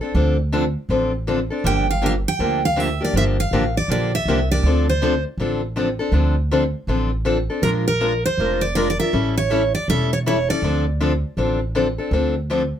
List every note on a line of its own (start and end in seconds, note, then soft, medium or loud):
0.01 0.14 C4 soft
0.01 0.14 D4 soft
0.01 0.14 A4 medium
0.15 0.74 D2 medium
0.15 0.36 D3 medium
0.15 0.36 F3 medium
0.15 0.36 C4 medium
0.15 0.36 D4 medium
0.15 0.36 A4 medium
0.52 0.63 D3 medium
0.52 0.64 F3 medium
0.52 0.64 C4 medium
0.52 0.64 D4 medium
0.52 0.64 A4 loud
0.89 1.49 A1 medium
0.89 1.11 D3 medium
0.89 1.11 F3 medium
0.89 1.11 C4 medium
0.89 1.11 D4 medium
0.89 1.11 A4 medium
1.27 1.38 D3 medium
1.27 1.38 F3 medium
1.27 1.39 C4 medium
1.27 1.39 D4 medium
1.27 1.38 A4 medium
1.50 1.64 C4 soft
1.50 1.64 D4 medium
1.50 1.64 A4 soft
1.64 2.24 G1 medium
1.64 1.85 D3 medium
1.64 1.85 F3 medium
1.64 1.86 A#3 medium
1.64 1.86 D4 medium
1.64 1.86 G4 medium
1.64 1.87 G5 medium
1.91 2.02 F5 medium
2.02 2.13 D3 medium
2.02 2.13 F3 medium
2.02 2.13 A#3 medium
2.02 2.14 D4 medium
2.02 2.13 G4 medium
2.06 2.12 F5 medium
2.28 2.64 G5 medium
2.39 2.99 D2 medium
2.39 2.60 D3 medium
2.39 2.61 F3 medium
2.39 2.61 A#3 medium
2.39 2.61 D4 medium
2.39 2.61 G4 medium
2.65 2.80 F5 medium
2.76 2.88 D3 medium
2.76 2.88 F3 medium
2.76 2.88 A#3 medium
2.76 2.88 D4 medium
2.76 2.88 G4 medium
2.76 3.02 E5 medium
3.01 3.14 A#3 soft
3.01 3.14 D4 soft
3.01 3.14 G4 medium
3.01 3.17 D5 medium
3.13 3.44 G1 medium
3.13 3.36 D3 medium
3.13 3.36 F3 medium
3.13 3.36 A#3 medium
3.13 3.36 D4 medium
3.13 3.36 G4 medium
3.13 3.23 E5 medium
3.40 3.76 F5 medium
3.51 3.83 A1 medium
3.51 3.63 D3 loud
3.51 3.63 F3 medium
3.51 3.64 A#3 medium
3.51 3.63 D4 medium
3.51 3.64 G4 medium
3.77 3.89 D5 medium
3.88 4.20 A#1 medium
3.88 4.10 D3 medium
3.88 4.10 F3 medium
3.88 4.11 A#3 medium
3.88 4.11 D4 medium
3.88 4.11 G4 medium
3.88 4.12 D5 medium
4.15 4.51 E5 medium
4.25 4.58 C2 medium
4.25 4.38 D3 medium
4.25 4.39 F3 medium
4.25 4.38 A#3 medium
4.25 4.38 D4 medium
4.25 4.39 G4 medium
4.51 4.65 A#3 soft
4.51 4.64 D4 soft
4.51 4.64 G4 medium
4.51 4.85 D5 medium
4.63 5.23 D2 medium
4.63 4.86 D3 medium
4.63 4.86 F3 medium
4.63 4.86 C4 medium
4.63 4.86 D4 medium
4.63 4.87 A4 medium
4.89 5.23 C5 medium
5.02 5.13 D3 medium
5.02 5.13 F3 medium
5.02 5.13 C4 medium
5.02 5.13 D4 loud
5.02 5.13 A4 loud
5.37 5.98 A1 medium
5.37 5.60 D3 medium
5.37 5.61 F3 medium
5.37 5.61 C4 medium
5.37 5.61 D4 medium
5.37 5.61 A4 medium
5.76 5.87 D3 medium
5.76 5.87 F3 medium
5.76 5.88 C4 medium
5.76 5.88 D4 medium
5.76 5.88 A4 medium
5.99 6.12 C4 soft
5.99 6.12 D4 medium
5.99 6.13 A4 medium
6.12 6.72 D2 medium
6.12 6.34 D3 medium
6.12 6.34 F3 medium
6.12 6.35 C4 medium
6.12 6.35 D4 medium
6.12 6.35 A4 medium
6.51 6.62 D3 medium
6.51 6.62 F3 medium
6.51 6.63 C4 medium
6.51 6.63 D4 medium
6.51 6.63 A4 medium
6.87 7.47 A1 medium
6.87 7.09 D3 medium
6.87 7.10 F3 medium
6.87 7.10 C4 medium
6.87 7.10 D4 medium
6.87 7.10 A4 medium
7.25 7.37 D3 medium
7.25 7.37 F3 medium
7.25 7.37 C4 medium
7.25 7.37 D4 medium
7.25 7.37 A4 medium
7.50 7.64 C4 soft
7.50 7.63 D4 soft
7.50 7.63 A4 medium
7.62 8.22 A#1 medium
7.62 7.85 F3 medium
7.62 7.85 G#3 medium
7.62 7.85 D4 medium
7.62 7.85 F4 medium
7.62 7.69 A#4 medium
7.62 7.85 A#4 medium
7.88 8.25 A#4 medium
8.00 8.12 F3 medium
8.00 8.12 G#3 medium
8.00 8.12 D4 medium
8.00 8.12 F4 medium
8.00 8.12 A#4 loud
8.26 8.63 C5 medium
8.38 8.98 F1 medium
8.38 8.60 F3 medium
8.38 8.60 G#3 medium
8.38 8.60 D4 medium
8.38 8.60 F4 medium
8.38 8.60 A#4 medium
8.61 8.74 D5 medium
8.75 8.87 F3 medium
8.75 8.87 G#3 medium
8.75 8.87 D4 medium
8.75 8.87 F4 medium
8.75 8.87 A#4 medium
8.75 8.89 D5 medium
8.90 8.99 D5 medium
8.99 9.13 D4 soft
8.99 9.13 F4 soft
8.99 9.12 A#4 soft
8.99 9.37 E5 medium
9.13 9.73 A1 medium
9.13 9.34 E3 medium
9.13 9.34 G3 medium
9.13 9.34 C#4 medium
9.13 9.34 E4 medium
9.13 9.35 A4 medium
9.37 9.72 C#5 medium
9.50 9.61 E3 medium
9.50 9.62 G3 medium
9.50 9.62 C#4 medium
9.50 9.62 E4 loud
9.50 9.62 A4 loud
9.75 9.87 D5 medium
9.88 10.48 E1 medium
9.88 10.09 E3 medium
9.88 10.10 G3 medium
9.88 10.10 C#4 medium
9.88 10.10 E4 medium
9.88 10.10 A4 medium
9.88 10.13 E5 medium
10.13 10.18 C#5 medium
10.26 10.37 E3 medium
10.26 10.37 G3 medium
10.26 10.37 C#4 medium
10.26 10.37 E4 medium
10.26 10.37 A4 medium
10.26 10.50 C#5 medium
10.49 10.63 C#4 soft
10.49 10.62 E4 soft
10.49 10.62 A4 medium
10.49 10.84 D5 medium
10.62 11.22 D2 medium
10.62 10.84 D3 medium
10.62 10.84 F3 medium
10.62 10.84 C4 medium
10.62 10.85 D4 medium
10.62 10.85 A4 medium
11.00 11.11 D3 medium
11.00 11.11 F3 medium
11.00 11.12 C4 medium
11.00 11.12 D4 medium
11.00 11.12 A4 loud
11.37 11.97 A1 medium
11.37 11.59 D3 medium
11.37 11.59 F3 medium
11.37 11.59 C4 medium
11.37 11.59 D4 medium
11.37 11.59 A4 medium
11.75 11.86 D3 medium
11.75 11.86 F3 medium
11.75 11.86 C4 medium
11.75 11.86 D4 medium
11.75 11.87 A4 medium
11.98 12.12 C4 soft
11.98 12.12 D4 soft
11.98 12.12 A4 medium
12.11 12.72 D2 medium
12.11 12.34 D3 medium
12.11 12.34 F3 medium
12.11 12.34 C4 medium
12.11 12.34 D4 medium
12.11 12.34 A4 medium
12.50 12.61 D3 medium
12.50 12.61 F3 medium
12.50 12.61 C4 medium
12.50 12.62 D4 loud
12.50 12.62 A4 medium